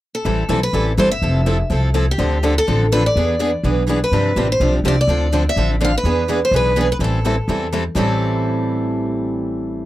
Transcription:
0.15 A4
0.25 A1 E3 G3 C4 E4 A4
0.49 B1 E3 G3 C4 E4 A4
0.63 B4
0.73 A1 E3 G3 C4 E4 A4
0.97 G1 E3 G3 C4 E4 A4 C5
1.11 E5
1.22 F1 F3 C4 E4 A4
1.47 F3 C4 E4 A4
1.70 C2 F3 C4 E4 A4
1.94 F3 C4 E4 A4
2.11 G4
2.18 D2 D3 F3 C4 D4 A4
2.43 D3 F3 C4 D4 A4
2.58 A4
2.68 A1 D3 F3 C4 D4 A4
2.92 D3 F3 C4 D4 A4 B4
3.06 D5
3.16 E2 E3 B3 D4 G#4 B4
3.39 E3 B3 D4 G#4 B4
3.63 B1 E3 B3 D4 G#4 B4
3.87 E3 B3 D4 G#4 B4
4.04 B4
4.12 G2 C3 F3 C4 D4 G4
4.36 A1 C3 F3 C4 D4 G4
4.52 C5
4.60 B1 C3 F3 C4 D4 G4
4.84 C2 C3 F3 C4 D4 G4
4.88 D5
5.01 D5
5.07 D2 D3 F3 C4 D4 A4
5.32 D3 F3 C4 D4 A4
5.49 E5
5.56 A1 D3 F3 C4 D4 A4
5.81 D3 F3 C4 D4 A4 F5
5.98 B4
6.04 E2 E3 B3 D4 G#4 B4
6.28 E3 B3 D4 G#4 B4
6.45 C5
6.51 B1 E3 B3 D4 G#4 B4
6.56 B4
6.76 E3 B3 D4 G#4 B4
6.81 G#4
6.92 B4
6.99 A1 E3 G3 C4 E4 A4
7.04 A4
7.25 E3 G3 C4 E4 A4
7.48 E2 E3 G3 C4 E4 A4
7.73 E3 G3 C4 E4 A4
7.95 A1 A2 E3 G3 C4 E4 A4

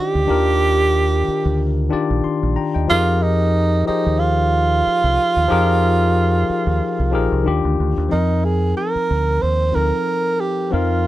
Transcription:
Already playing: D#4 F4 G4 D5 D#5
0.15 D2
0.27 D#2 D#3 D4 F4 G4 A#4
1.28 muted fingered electric bass stroke
1.45 D2
1.89 D#3 D4 F4 G4 D5, muted fingered electric bass stroke
2.10 A#1
2.24 C6, muted fingered electric bass stroke
2.43 A#1
2.56 G5 A#5
2.74 D#2 D#5 G5
2.88 F2 F3 D#4 F4 G4 G#4 A#4
3.23 D#4
3.85 F3 D#4 G4 G#4 C5, muted fingered electric bass stroke
4.06 D#2
4.19 F4
4.87 muted fingered electric bass stroke
5.04 C2
5.37 D#2
5.48 F2 F3 D#4 G4 G#4 A#4
6.50 muted fingered electric bass stroke
6.67 D#2
7.00 C2
7.11 A#1 F3 D#4 G4 G#4 A#4
7.32 C2
7.44 D#2 D#3 D4 F4 G4
7.65 D2
7.80 D2
7.98 D#2
8.08 F3 C4 D#4
8.12 F2 A#4
8.45 G#4
8.77 A#4
8.95 muted fingered electric bass stroke
9.11 D2
9.42 D#2 C5
9.72 F3 C4 D#4 A4 A#4
9.76 D2
9.82 A#4
10.40 G4
10.70 F2 F3 C4 D#4 F4 A#4

